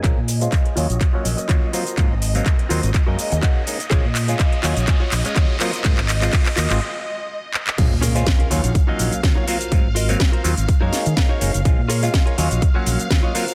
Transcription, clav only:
X:1
M:4/4
L:1/16
Q:"Swing 16ths" 1/4=124
K:Bbm
V:1 name="Clav"
[A,CF] z2 [A,DFc]3 [G,B,DF] z2 [G,B,Df]3 [G,B,DF]2 [G,B,CF] z | [G,B,CF] z2 [G,B,Cf]3 [G,B,CF] z2 [A,B,DE]3 [A,DE]2 [A,B,DE] z | [A,CDF] z2 [A,DF]3 [G,B,DF] z [A,CDF] z2 [A,Df]3 [G,B,CF] z | [A,CF] z2 [A,CF] [A,CF] z2 [A,CF] z8 |
[A,CDF] z2 [A,DFc]3 [G,B,DF] z2 [G,B,Df]3 [G,B,DF]2 [G,B,CF] z | [G,B,CF] z2 [G,B,Cf]3 [G,B,CF] z2 [A,B,DE]3 [A,B,DE]2 [A,B,DE] z | [A,CDF] z2 [A,DF]3 [G,B,DF] z2 [G,B,D]3 [G,B,DF]2 [G,B,CF] z |]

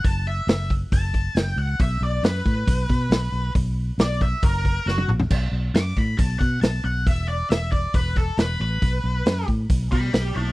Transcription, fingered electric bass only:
X:1
M:4/4
L:1/8
Q:1/4=137
K:Bm
V:1 name="Fingered electric bass" clef=bass
F,,,2 F,,,2 F,,,2 F,,, C,, | B,,, B,,, F,, A,, B,,, B,, B,,, B,,, | B,,,2 B,,,2 F,,,2 F,,, ^A,,, | B,,, B,,, F,, A,, B,,, B,, B,,, B,,, |
E,,,2 E,,,2 E,,,2 E,,, A,,, | B,,, B,,, F,, A,, B,,, B,, B,,, B,,, |]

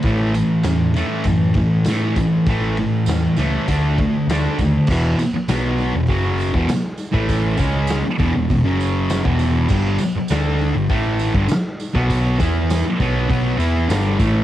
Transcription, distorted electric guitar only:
X:1
M:4/4
L:1/16
Q:1/4=100
K:Edor
V:1 name="Distorted electric guitar" clef=bass
[A,,E,A,]2 [A,,E,]2 [A,,E,]2 [A,,E,A,]2 [A,,E,]2 [A,,E,]2 [A,,E,A,]2 [A,,E,]2 | [A,,E,A,]2 [A,,E,]2 [A,,E,]2 [A,,E,A,]2 [D,A,D]2 [D,A,]2 [D,A,D]2 [D,A,]2 | [E,,B,,E,]2 z2 [B,,F,B,]3 [E,,B,,] [F,,C,F,]3 [E,,B,,] z3 [A,,E,A,]- | [A,,E,A,]2 [C,^G,C]3 z [E,,B,,] [E,,B,,] [E,,B,,] [F,,C,F,]4 [E,,B,,E,]3 |
[G,,D,G,]2 z2 [D,A,D]3 [G,,D,] [A,,E,A,]3 [G,,D,] z3 [B,,F,B,]- | [B,,F,B,]2 [E,B,E]3 z [B,,F,B,]2 [B,,F,B,]2 [E,B,E]2 [G,,D,G,]2 [A,,E,A,]2 |]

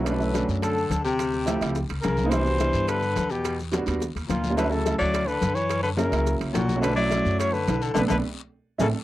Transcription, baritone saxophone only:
X:1
M:4/4
L:1/8
Q:1/4=213
K:Bm
V:1 name="Baritone saxophone" clef=bass
D,3 z D,3 =C,- | =C,4 z2 ^C,2 | E,4 D,3 B,,- | B,, z4 z ^A,,2 |
D, C,2 F,2 D,2 E,- | E, D, C,3 z ^A,,2 | D, F,3 F, D,2 D, | D, D, z4 C, z |]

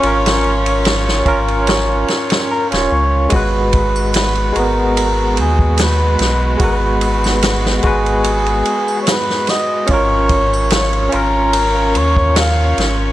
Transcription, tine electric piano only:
X:1
M:4/4
L:1/16
Q:"Swing 16ths" 1/4=73
K:G#dor
V:1 name="Tine electric piano"
[CEA]6 [CEA] z6 [CEc]3 | [G,FB]6 [G,B,F]8- [G,B,F]2 | [G,FB]6 [G,FB] z8 z | [CEA]6 [CEA]8- [CEA]2 |]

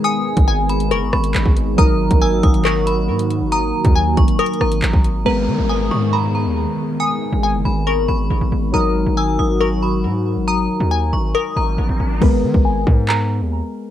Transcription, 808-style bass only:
X:1
M:4/4
L:1/16
Q:1/4=138
K:G#m
V:1 name="808-style bass" clef=bass
z3 G,,,4- G,,, F,,, G,,, G,,,2 G,,, G,,,3 | G,,,3 G,,,3 G,,,6 G,,3 G,,,- | G,,,2 z D,,3 G,,,2 z2 G,,,2 G,,, G,,,3 | G,,,2 D, G,,,3 G,,4- G,, D,,2 z3 |
z3 G,,,2 F,,, G,,,4 G,,,2 G,,, G,,, G,,,2 | G,,,3 G,,,3 G,,,6 G,,3 G,,,- | G,,,2 z D,,3 G,,,2 z2 G,,,2 G,,, G,,, G,,,2 | G,,,2 D, G,,,3 G,,4- G,, D,,2 z3 |]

